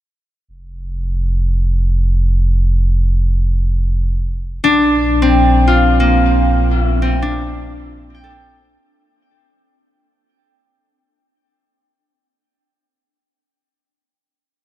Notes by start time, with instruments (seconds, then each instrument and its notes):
0.48 sub bass F1
4.63 sub bass A#1, harp D4
5.22 harp C4
5.67 harp F4
6.00 harp A#3
7.02 harp C4
7.22 harp D4
8.15 harp G5
8.24 harp A4